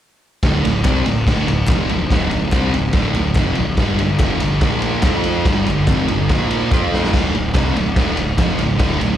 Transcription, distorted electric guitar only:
0.43 D2 A2 D3
0.63 D2 A2
0.84 C3 G3 C4
1.06 D2 A2
1.27 D2 A2 D3
1.47 D2 A2
1.69 F2 C3 F3
1.91 D2 A2
2.11 D2 A2 D3
2.33 D2 A2
2.53 C3 G3 C4
2.74 D2 A2
2.93 D2 A2 D3
3.16 D2 A2
3.36 F2 C3 F3
3.59 D2 A2
3.80 G2 D3 G3
4.00 G2 D3
4.20 F2 C3 F3
4.42 G2 D3
4.62 A#2 F3 A#3
5.04 F3 C4 F4
5.46 G2 D3 G3
5.67 G2 D3
5.87 F2 C3 F3
6.10 G2 D3
6.30 A#2 F3 A#3
6.72 F3 C4 F4
7.12 D2 A2 D3
7.34 D2 A2
7.54 C3 G3 C4
7.74 D2 A2
7.96 D2 A2 D3
8.17 D2 A2
8.38 F2 C3 F3
8.59 D2 A2
8.77 D2 A2 D3
9.00 D2 A2

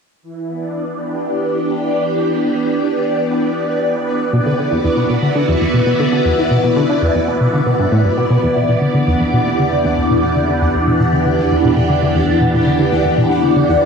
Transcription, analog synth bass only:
4.33 B2
4.46 D3
4.58 D3
4.71 E2
4.84 E2
4.97 B2
5.10 B2
5.22 D3
5.35 D3
5.48 E2
5.61 E2
5.74 B2
5.86 B2
5.99 D3
6.12 D3
6.25 E2
6.38 E2
6.51 B2
6.64 B2
6.76 D3
6.89 D3
7.02 E2
7.15 E2
7.28 B2
7.41 B2
7.53 D3
7.66 B2
7.79 G2
7.92 A2
8.05 G2
8.17 B2
8.30 B2
8.43 E2
8.56 B2
8.69 B2
8.81 D3
8.94 D3
9.07 E2
9.20 E2
9.33 B2
9.46 B2
9.59 D3
9.72 D3
9.84 E2
9.97 E2
10.10 B2
10.23 B2
10.35 D3
10.48 D3
10.61 E2
10.74 E2
10.87 B2
10.99 B2
11.12 D3
11.25 D3
11.38 E2
11.51 E2
11.64 B2
11.77 B2
11.89 D3
12.02 D3
12.15 E2
12.28 E2
12.41 B2
12.53 B2
12.66 D3
12.79 D3
12.92 E2
13.05 E2
13.18 B2
13.30 B2
13.43 D3
13.56 D3
13.69 E2
13.82 E2

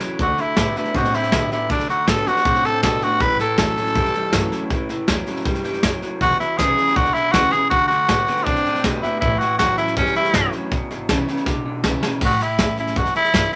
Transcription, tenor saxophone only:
0.22 F#4
0.42 E4
0.78 E4
0.96 F#4
1.16 E4
1.52 E4
1.71 D4
1.90 F#4
2.08 A4
2.27 F#4
2.65 A4
2.83 A4
3.04 F#4
3.21 B4
3.41 A4
3.59 A4
6.22 F#4
6.39 E4
6.58 G#4
6.96 F#4
7.14 E4
7.32 F#4
7.52 G#4
7.70 F#4
7.88 F#4
8.44 D4
9.02 E4
9.20 E4
9.39 F#4
9.58 F#4
9.78 E4
9.97 C#4
10.16 E4
12.25 F#4
12.43 E4
12.80 E4
12.98 F#4
13.16 E4

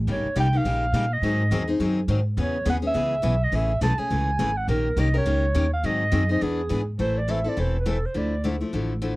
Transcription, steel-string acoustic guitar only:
0.07 C#3 G3 A#3 D#4 G4
0.36 C#3 G3 A#3 D#4 G4
0.53 A#3 D#4 G4
0.65 C#3 G3 A#3 D#4 G4
0.94 C#3 G3 A#3 D#4 G4
1.23 D#3 F#3 C4 D#4 G#4
1.51 D#3 F#3 C4 D#4 G#4
1.68 C4 D#4 G#4
1.80 D#3 F#3 C4 D#4 G#4
2.08 D#3 F#3 C4 D#4 G#4
2.37 C#3 E3 B3 C#4 G#4
2.65 C#3 E3 B3 C#4 G#4
2.82 B3 C#4 G#4
2.94 C#3 E3 B3 C#4 G#4
3.22 C#3 E3 B3 C#4 G#4
3.52 C#3 E3 A3 C#4 G#4
3.81 C#3 E3 A3 C#4 G#4
3.98 A3 C#4 G#4
4.10 C#3 E3 A3 C#4 G#4
4.39 C#3 E3 A3 C#4 G#4
4.68 D#3 A#3 C#4 G4 A#4
4.97 D#3 A#3 C#4 G4 A#4
5.14 C#4 G4 A#4
5.26 D#3 A#3 C#4 G4 A#4
5.54 D#3 A#3 C#4 G4 A#4
5.83 D#3 F#3 C4 D#4 G#4
6.12 D#3 F#3 C4 D#4 G#4
6.29 C4 D#4 G#4
6.41 E3 B3 D4 G#4
6.69 E3 B3 D4 G#4
6.99 E3 A3 C4 E4 A4
7.28 E3 A3 C4 E4 A4
7.44 C4 E4 A4
7.57 E3 A3 C4 E4 A4
7.86 E3 A3 C4 E4 A4
8.14 D3 F3 A3 E4
8.44 D3 F3 A3 E4
8.61 F3 A3 E4
8.73 D3 F3 A3 E4
9.02 D3 F3 A3 E4

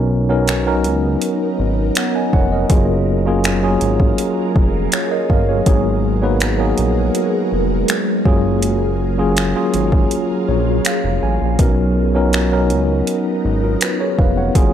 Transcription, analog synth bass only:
Already playing: B1
0.85 C#2
1.59 G#1
2.34 F1
2.70 F#1
3.81 G#1
4.56 F1
5.30 G1
5.67 G#1
6.78 A#1
7.52 F1
8.26 F#1
9.74 G#1
10.49 A#1
11.04 F1
11.23 A1
11.41 A#1
11.59 B1
12.71 C#2
13.45 G#1
14.19 F1
14.56 F#1

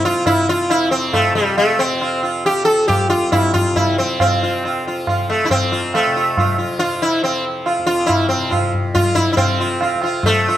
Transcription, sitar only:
0.05 F4
0.27 E4
0.49 F4
0.70 E4
0.91 C4
1.14 A3
1.35 G3
1.58 A3
1.79 C4
2.01 F4
2.23 F4
2.46 G4
2.65 A4
2.88 G4
3.10 F4
3.32 E4
3.54 F4
3.76 E4
3.98 C4
4.21 C4
4.43 F4
4.65 F4
4.87 F4
5.09 F4
5.30 A3
5.45 E4
5.51 C4
5.72 F4
5.95 A3
6.16 F4
6.39 F4
6.58 F4
6.79 F4
7.02 E4
7.24 C4
7.66 F4
7.86 F4
8.06 E4
8.29 C4
8.50 F4
8.95 F4
9.15 E4
9.32 E4
9.37 C4
9.60 F4
9.82 F4
10.03 F4
10.26 A3
10.48 F4

